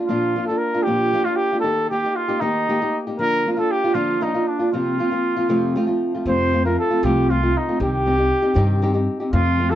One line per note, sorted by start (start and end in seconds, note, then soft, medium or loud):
0.06 0.36 A#2 medium
0.06 0.35 F3 medium
0.06 0.35 A#3 medium
0.06 0.35 D4 medium
0.06 0.44 F4 medium
0.10 0.36 F4 medium
0.36 0.49 F3 medium
0.36 0.49 A#3 soft
0.36 0.49 D4 medium
0.36 0.48 F4 medium
0.47 0.74 A#3 soft
0.47 0.73 D4 medium
0.47 0.73 F4 soft
0.47 0.59 A4 medium
0.58 0.85 A#4 medium
0.74 0.86 A#3 soft
0.74 0.87 D4 soft
0.74 0.86 F4 medium
0.83 1.14 A#2 medium
0.83 1.12 A#3 medium
0.83 1.26 G4 loud
0.87 1.12 F3 medium
0.87 1.13 D4 medium
0.87 1.13 F4 medium
1.13 1.26 F3 medium
1.13 1.26 A#3 medium
1.13 1.25 D4 medium
1.13 1.24 F4 medium
1.25 1.52 A#3 soft
1.25 1.51 D4 soft
1.25 1.37 F4 medium
1.25 1.51 F4 medium
1.36 1.59 G4 medium
1.52 1.63 A#3 soft
1.52 1.63 D4 soft
1.52 1.64 F4 soft
1.60 1.89 D#3 medium
1.60 1.90 A#3 medium
1.60 1.91 D#4 medium
1.60 1.87 A4 medium
1.64 1.91 G4 medium
1.90 2.03 D#3 medium
1.90 2.04 A#3 soft
1.90 2.04 D#4 medium
1.90 2.17 G4 medium
1.90 2.03 G4 medium
2.05 2.29 A#3 soft
2.05 2.28 D#4 soft
2.05 2.27 G4 medium
2.16 2.42 F4 medium
2.28 2.41 A#3 soft
2.28 2.41 D#4 medium
2.28 2.41 G4 medium
2.40 2.68 D#3 medium
2.40 2.68 A#3 medium
2.40 2.99 D#4 medium
2.40 2.68 D#4 medium
2.40 2.68 G4 medium
2.69 2.81 D#3 medium
2.69 2.81 A#3 medium
2.69 2.81 D#4 medium
2.69 2.80 G4 medium
2.82 3.07 A#3 soft
2.82 3.06 D#4 medium
2.82 3.06 G4 medium
3.07 3.18 A#3 soft
3.07 3.19 D#4 soft
3.07 3.19 G4 soft
3.19 3.45 D3 medium
3.19 3.44 F3 medium
3.19 3.45 A#3 medium
3.19 3.45 D4 medium
3.19 3.46 F4 medium
3.19 3.53 A#4 loud
3.46 3.58 F3 medium
3.46 3.58 A#3 medium
3.46 3.57 D4 medium
3.46 3.56 F4 medium
3.53 3.60 A#4 medium
3.57 3.83 A#3 soft
3.57 3.83 D4 soft
3.57 3.82 F4 medium
3.57 3.73 A4 medium
3.71 3.96 G4 medium
3.84 3.93 A#3 soft
3.84 3.94 D4 soft
3.84 3.94 F4 medium
3.94 4.21 D3 medium
3.94 4.19 F3 medium
3.94 4.20 A#3 medium
3.94 4.21 D4 medium
3.94 4.24 F4 medium
3.94 4.21 F4 medium
4.21 4.33 F3 medium
4.21 4.34 A#3 medium
4.21 4.34 D4 medium
4.21 4.49 D#4 medium
4.21 4.33 F4 medium
4.34 4.60 A#3 soft
4.34 4.59 D4 soft
4.34 4.58 F4 medium
4.47 4.71 D4 medium
4.59 4.72 A#3 soft
4.59 4.72 D4 soft
4.59 4.72 F4 medium
4.71 4.99 F2 soft
4.71 4.99 C3 medium
4.71 4.96 F3 medium
4.71 4.98 A#3 medium
4.71 4.98 C4 medium
4.71 5.96 F4 medium
4.71 4.99 F4 medium
4.98 5.10 F3 medium
4.98 5.11 A#3 medium
4.98 5.10 C4 medium
4.98 5.10 F4 medium
5.11 5.37 F3 soft
5.11 5.36 A#3 soft
5.11 5.36 C4 soft
5.11 5.35 F4 soft
5.36 5.48 F3 medium
5.36 5.49 A#3 soft
5.36 5.48 C4 medium
5.36 5.49 F4 medium
5.49 5.75 F2 medium
5.49 5.75 C3 medium
5.49 5.74 F3 medium
5.49 5.75 A3 medium
5.49 5.76 C4 medium
5.49 5.76 F4 medium
5.76 5.87 F3 medium
5.76 5.87 A3 medium
5.76 5.86 C4 medium
5.76 5.86 F4 medium
5.87 6.13 F3 soft
5.87 6.13 A3 medium
5.87 6.13 C4 medium
5.87 6.12 F4 medium
6.14 6.25 F3 soft
6.14 6.26 A3 soft
6.14 6.26 C4 soft
6.14 6.26 F4 soft
6.26 6.76 F2 medium
6.26 6.53 F2 medium
6.26 6.53 C3 medium
6.26 6.52 F3 medium
6.26 6.52 A3 medium
6.26 6.52 C4 soft
6.26 6.53 F4 medium
6.26 6.64 C5 medium
6.53 6.65 F3 medium
6.53 6.65 A3 medium
6.53 6.65 C4 soft
6.53 6.64 F4 medium
6.65 6.91 F3 soft
6.65 6.91 A3 soft
6.65 6.90 C4 soft
6.65 6.89 F4 medium
6.65 6.77 A#4 medium
6.79 7.06 A4 medium
6.90 7.03 F3 soft
6.90 7.03 A3 soft
6.90 7.03 C4 soft
6.90 7.03 F4 medium
7.03 7.53 C2 medium
7.03 7.30 F2 medium
7.03 7.30 C3 medium
7.03 7.29 F3 medium
7.03 7.29 A3 medium
7.03 7.29 C4 medium
7.03 7.31 F4 medium
7.03 7.32 G4 medium
7.30 7.42 F3 medium
7.30 7.41 A3 medium
7.30 7.42 C4 medium
7.30 7.59 F4 medium
7.30 7.41 F4 medium
7.42 7.68 F3 soft
7.42 7.68 A3 soft
7.42 7.68 C4 soft
7.42 7.67 F4 medium
7.57 7.81 D#4 medium
7.69 7.80 F3 soft
7.69 7.80 A3 soft
7.69 7.79 C4 soft
7.69 7.80 F4 soft
7.80 8.30 C2 medium
7.80 8.06 C3 medium
7.80 8.05 D#3 medium
7.80 8.06 C4 medium
7.80 8.06 D#4 medium
7.80 8.07 G4 medium
7.80 9.05 G4 medium
8.06 8.19 D#3 soft
8.06 8.18 C4 medium
8.06 8.18 D#4 medium
8.06 8.17 G4 medium
8.18 8.43 C4 soft
8.18 8.41 D#4 soft
8.18 8.41 G4 soft
8.42 8.54 C4 medium
8.42 8.54 D#4 medium
8.42 8.54 G4 medium
8.54 9.06 G2 medium
8.54 8.82 C3 medium
8.54 8.81 D#3 medium
8.54 8.81 C4 medium
8.54 8.81 D#4 medium
8.54 8.82 G4 medium
8.82 8.95 D#3 medium
8.82 8.94 C4 medium
8.82 8.93 D#4 medium
8.82 8.93 G4 medium
8.94 9.20 C4 soft
8.94 9.20 D#4 medium
8.94 9.19 G4 medium
9.20 9.32 C4 soft
9.20 9.33 D#4 soft
9.20 9.33 G4 medium
9.31 9.75 F2 loud
9.31 9.60 F2 medium
9.31 9.60 C3 medium
9.31 9.57 F3 medium
9.31 9.58 A3 medium
9.31 9.59 C4 medium
9.31 9.72 F4 medium
9.31 9.59 F4 medium
9.58 9.71 F3 medium
9.58 9.71 A3 medium
9.58 9.71 C4 medium
9.58 9.70 F4 medium
9.71 9.75 F4 medium
9.71 9.75 A4 medium